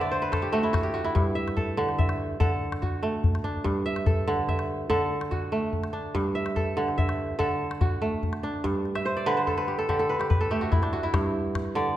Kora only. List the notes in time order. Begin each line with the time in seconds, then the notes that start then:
Already playing: D3 B4 C5 E5 F#5
0.01 D5
0.12 C5
0.22 B4
0.32 A4
0.42 G4
0.52 A3 F#4
0.63 E4
0.73 F#4
0.83 G4
0.94 F#4
1.04 E4
1.15 G2
1.35 E5
1.57 A4
1.77 D3
1.98 E5
2.40 D3 A4
2.82 F#4
3.03 A3
3.44 D4
3.64 G2
3.86 E5
4.06 A4
4.28 D3
4.49 E5
4.90 D3 A4
5.31 F#4
5.52 A3
5.93 D4
6.15 G2
6.35 E5
6.56 A4
6.77 D3
6.98 E5
7.39 D3 A4
7.81 F#4
8.02 A3
8.43 D4
8.64 G2
8.95 E5
9.05 C5
9.17 D5
9.26 D3 B4
9.37 C5
9.47 A4
9.57 B4
9.68 G4
9.79 A4
9.89 D3 G4
9.99 A4
10.09 B4
10.19 G4
10.30 B4
10.41 A4
10.51 A3 G4
10.61 F#4
10.72 E4
10.82 D4
10.93 F#4
11.03 E4
11.14 G2
11.75 D3 D5